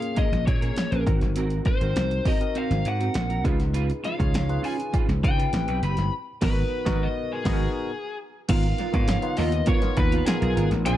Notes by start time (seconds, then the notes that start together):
Already playing: A#3 C#4 F4 G#4 F5
0.01 muted clean electric guitar stroke, closed hi-hat
0.15 C#4 G#4 A#4 D#5, kick, closed hi-hat
0.31 A#1, muted clean electric guitar stroke, snare, closed hi-hat
0.45 A#2 C#5, muted clean electric guitar stroke, kick, closed hi-hat
0.61 C#4 G#4 A#4, closed hi-hat
0.76 muted clean electric guitar stroke, snare, closed hi-hat
0.91 A#1 C#4 G#4 A#4, closed hi-hat
1.06 G#1 C4 D#4 F#4 A#4, kick, closed hi-hat
1.21 G1, muted clean electric guitar stroke, snare, closed hi-hat
1.36 G#1 C4 F#4 A#4, closed hi-hat
1.50 closed hi-hat
1.65 C5, muted clean electric guitar stroke, kick, snare, closed hi-hat
1.81 G#1 C4 D#4 F#4 A#4 C5, closed hi-hat
1.96 C2, snare, closed hi-hat
2.10 muted clean electric guitar stroke, closed hi-hat
2.25 C4 F#4 A#4 D#5, kick, open hi-hat
2.40 C4 D#4 F#4 A#4, muted clean electric guitar stroke, closed hi-hat
2.55 C4 F#4 C5 F5, closed hi-hat
2.70 G#1, muted clean electric guitar stroke, snare, closed hi-hat
2.85 G#2 F#5, muted clean electric guitar stroke, closed hi-hat
3.00 C4 F#4 A#4, closed hi-hat
3.14 A#1, snare, closed hi-hat
3.29 C4 F#4 A#4, closed hi-hat
3.44 C#2 C#4 D#4 F4 G#4 B4, kick, closed hi-hat
3.59 muted clean electric guitar stroke, snare, closed hi-hat
3.73 C#4 F4 B4, closed hi-hat
3.90 closed hi-hat
4.03 C#4 F4 B4 F5, snare, closed hi-hat
4.18 C#2 C#4 D#4 F4 G#4 C#5, kick, closed hi-hat
4.33 C#2, muted clean electric guitar stroke, snare, closed hi-hat
4.48 D#4 F4 G#4 B4, muted clean electric guitar stroke, closed hi-hat
4.62 C#4 F4 B4 G#5, open hi-hat
4.77 muted clean electric guitar stroke, closed hi-hat
4.93 C#4 F4 B4, kick, closed hi-hat
5.08 C#2, muted clean electric guitar stroke, snare, closed hi-hat
5.23 C#3 G5, muted clean electric guitar stroke, kick, closed hi-hat
5.38 C#4 F4 B4, closed hi-hat
5.53 A1 C4 E4 G4 B4, muted clean electric guitar stroke, snare, closed hi-hat
5.68 B1 C4 G4 B4, closed hi-hat
5.82 F#1 C4 G4 B4 B5, closed hi-hat
5.97 G1, muted clean electric guitar stroke, snare, closed hi-hat
6.41 G#1 B3 D#4 F#4 A#4 B4, kick, snare, crash
6.85 G#1 B3 D#4 F#4 A#4, kick, snare
7.03 D#5
7.33 G#4
7.44 G#1 B3 D#4 F#4 B4, kick, snare, crash
7.53 A#4
8.48 G#1 B3 D#4 F4 A#4 F5, kick, closed hi-hat, crash
8.63 closed hi-hat
8.78 B3 F4 A#4, snare, closed hi-hat
8.92 G#2 B3 D#4 F4 B4 C#5, kick, closed hi-hat
9.07 muted clean electric guitar stroke, snare, closed hi-hat
9.22 B3 D#4 F4 B4, muted clean electric guitar stroke, closed hi-hat
9.37 D#2 B3 F4 A#4 D#5, open hi-hat
9.52 muted clean electric guitar stroke, closed hi-hat
9.66 B3 F4 A#4 C#5, kick, closed hi-hat
9.81 B3 D#4 F4 A#4, muted clean electric guitar stroke, snare, closed hi-hat
9.97 D#2 B4, muted clean electric guitar stroke, kick, closed hi-hat
10.11 B3 F4 A#4, closed hi-hat
10.26 B3 D#4 F4 G#4 A#4, muted clean electric guitar stroke, snare, closed hi-hat
10.40 B1 B3 F4 A#4, closed hi-hat
10.55 G#1 B3 F4 A#4, closed hi-hat
10.71 A1, muted clean electric guitar stroke, snare, closed hi-hat
10.85 A#1 C4 D4 F4 G#4 G#5, closed hi-hat